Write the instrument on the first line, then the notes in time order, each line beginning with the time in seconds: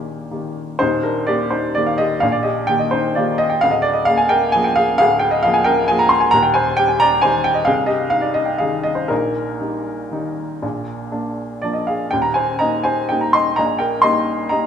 upright piano
Already playing: A#1 A#2 D#3 A#3 G4 D#5
0.31 D#3 A#3 G4
0.79 D#1 D#2 D#4 C5
1.03 D4 A#4
1.27 A#3 G4 D5
1.50 D#4 C5
1.75 D#3 A#3 G4 D5
1.87 F5
1.98 G4 D#5
2.20 A#1 A#2 F5
2.32 D5
2.43 G4 D#5
2.67 D#3 A#3 G4 G5
2.79 D#5
2.91 D#4 C5
3.15 D#3 A#3 F4 G4 D5
3.38 D#5
3.50 G5
3.61 D1 D2 F5
3.71 D#5
3.82 D5
3.94 D#5
4.05 A#3 G#4 F5
4.17 G#5
4.29 A#4 G5
4.52 F3 A#3 G#4 G#5
4.64 G5
4.76 G#4 F5
4.98 D1 D2 G#4 F5
5.19 G5
5.31 D#5
5.43 F3 A#3 G#4 F5
5.54 G#5
5.64 A#4 G5
5.88 F3 A#3 G#4 G#5
5.99 A#5
6.09 C6
6.20 G#5
6.31 D#1 D#2 A#5
6.43 G5
6.54 C5 G#5
6.77 G3 G4 G5
6.88 G#5
7.00 D5 A#5
7.22 D#3 G3 G4 C5 G#5
7.44 G5
7.54 D#5
7.65 C1 C2 G#4 F5
7.86 G4 D#5
8.10 G3 D#4 F5
8.21 D5
8.34 D#5
8.46 G5
8.58 D#3 G3 D#4 G#4 F5
8.83 D#5
8.95 C5
9.08 A#1 A#2 D#4 A#4
9.60 G3 D#4
10.11 D#3 G3 D#4
10.62 A#1 A#2
11.12 A#3 D4
11.62 F3 A#3 D4 D5
11.73 D#5
11.87 G#4 F5
12.11 D#1 D#2 G5
12.22 A#5
12.34 C5 G#5
12.59 A#3 D#4 D#5 A#5
12.83 C5 G#5
13.09 G3 A#3 D#4 G5
13.21 A#5
13.33 D#5 C6
13.56 A#1 A#2 D#5 A#5
13.79 A#4 G5
14.02 G3 A#3 D#4 D#5 C6
14.49 G3 A#3 D#4 D#5 A#5